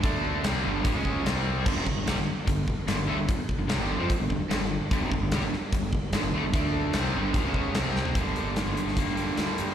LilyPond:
<<
  \new Staff \with { instrumentName = "Steel-string acoustic guitar" } { \time 4/4 \key g \minor \tempo 4 = 148 r1 | r1 | r1 | r1 |
r1 | <g, d g bes d' bes'>8 <g bes d' bes'>8 <g, d g bes d' bes'>8 <g bes d' bes'>8 <g bes d' bes'>4 <g, d g bes d' bes'>8 <g bes d' bes'>8 | }
  \new Staff \with { instrumentName = "Overdriven electric guitar" } { \clef bass \time 4/4 \key g \minor <d a d'>4 <c g c'>8 <g, d g>8 <bes, f>16 <cis aes cis'>8. <c g c'>4 | <g, d>16 <f, c>16 <g, d>16 <g, d>16 <c g>16 <g, d>16 r8 <g, d>8 r8 <g, d>16 <g, d>16 <d a>16 <g, d>16 | <g, d>16 r8 <g, d>16 <c g>16 <g, d g>8 <f c'>16 r16 <g, d>16 <g, d>16 r16 <g, d>16 <g, d>8 r16 | <g, d>16 <f, c>16 <g, d>16 <g, d>16 <c g>16 <g, d>16 r8 <g, d>8 r8 <g, d>16 <g, d>16 <d a>16 <g, d>16 |
<d a d'>4 <c g c'>8 <g, d g>8 <bes, f>16 <cis aes cis'>8. <c g c'>4 | <g, d g bes d'>2 <g, d g bes d'>2 | }
  \new Staff \with { instrumentName = "Overdriven electric guitar" } { \clef bass \time 4/4 \key g \minor <d a d'>4 <c g c'>8 <g, d g>8 <bes, f>16 <cis aes cis'>8. <c g c'>4 | <g, d>16 <f, c>16 <g, d>16 <g, d>16 <c g>16 <g, d>16 r8 <g, d>8 r8 <g, d>16 <g, d>16 <d a>16 <g, d>16 | <g, d>16 r8 <g, d>16 <c g>16 <g, d g>8 <f c'>16 r16 <g, d>16 <g, d>16 r16 <g, d>16 <g, d>8 r16 | <g, d>16 <f, c>16 <g, d>16 <g, d>16 <c g>16 <g, d>16 r8 <g, d>8 r8 <g, d>16 <g, d>16 <d a>16 <g, d>16 |
<d a d'>4 <c g c'>8 <g, d g>8 <bes, f>16 <cis aes cis'>8. <c g c'>4 | <g, d g>2~ <g, d g>8 <g, d g>8 <g, d g>4 | }
  \new Staff \with { instrumentName = "Fingered electric bass" } { \clef bass \time 4/4 \key g \minor d,4 c,8 g,,8 bes,,16 cis,8. c,4 | g,,16 f,,16 g,,16 g,,16 c,16 g,,16 r8 g,,8 r8 g,,16 g,,16 d,16 g,,16 | g,,16 r8 g,,16 c,16 g,,8 f,16 r16 g,,16 g,,16 r16 g,,16 g,,8 r16 | g,,16 f,,16 g,,16 g,,16 c,16 g,,16 r8 g,,8 r8 g,,16 g,,16 d,16 g,,16 |
d,4 c,8 g,,8 bes,,16 cis,8. c,4 | g,,8 r16 g,,8 g,,16 r16 g,,8 r8. d,16 r16 g,8 | }
  \new DrumStaff \with { instrumentName = "Drums" } \drummode { \time 4/4 <hh bd>4 <hh sn>4 <hh bd>8 bd8 <hh sn>4 | <cymc bd>8 bd8 <hh sn>4 <hh bd>8 bd8 <hh sn>4 | <hh bd>8 bd8 <hh sn>4 <hh bd>8 bd8 <hh sn>4 | <hh bd>8 bd8 <hh sn>8 sn8 <hh bd>8 bd8 <hh sn>4 |
<hh bd>4 <hh sn>4 <hh bd>8 bd8 <hh sn>8 sn16 tomfh16 | <hh bd>8 hh8 <hh sn>8 hh16 sn16 <hh bd>8 hh8 <hh sn>8 hh8 | }
>>